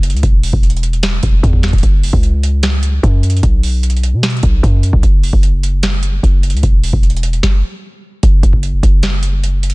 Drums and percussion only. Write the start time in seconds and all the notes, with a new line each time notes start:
0.03 closed hi-hat
0.10 closed hi-hat
0.17 closed hi-hat
0.23 kick, closed hi-hat
0.43 open hi-hat
0.53 kick
0.63 closed hi-hat
0.70 closed hi-hat
0.77 closed hi-hat
0.83 closed hi-hat
0.93 closed hi-hat
1.03 finger snap, snare, closed hi-hat
1.23 kick, closed hi-hat
1.43 kick, closed hi-hat
1.53 kick
1.63 finger snap, snare, closed hi-hat
1.68 closed hi-hat
1.73 kick, closed hi-hat
1.78 closed hi-hat
1.83 kick, closed hi-hat
2.03 open hi-hat
2.13 kick
2.23 closed hi-hat
2.43 closed hi-hat
2.63 finger snap, snare, closed hi-hat
2.83 closed hi-hat
3.03 kick, closed hi-hat
3.23 closed hi-hat
3.30 closed hi-hat
3.37 closed hi-hat
3.43 kick, closed hi-hat
3.63 open hi-hat
3.83 closed hi-hat
3.90 closed hi-hat
3.97 closed hi-hat
4.03 closed hi-hat
4.23 finger snap, snare, closed hi-hat
4.30 closed hi-hat
4.37 closed hi-hat
4.43 kick, closed hi-hat
4.63 kick, closed hi-hat
4.83 closed hi-hat
4.93 kick
5.03 kick, closed hi-hat
5.23 open hi-hat
5.33 kick
5.43 closed hi-hat
5.63 closed hi-hat
5.83 finger snap, snare, closed hi-hat
6.03 closed hi-hat
6.23 kick, closed hi-hat
6.43 closed hi-hat
6.50 closed hi-hat
6.57 closed hi-hat
6.63 kick, closed hi-hat
6.83 open hi-hat
6.93 kick
7.03 closed hi-hat
7.10 closed hi-hat
7.17 closed hi-hat
7.23 closed hi-hat
7.33 closed hi-hat
7.43 kick, snare
8.23 kick, closed hi-hat
8.43 kick, closed hi-hat
8.53 kick
8.63 closed hi-hat
8.83 kick, closed hi-hat
9.03 finger snap, snare, closed hi-hat
9.23 closed hi-hat
9.44 closed hi-hat
9.63 closed hi-hat
9.70 closed hi-hat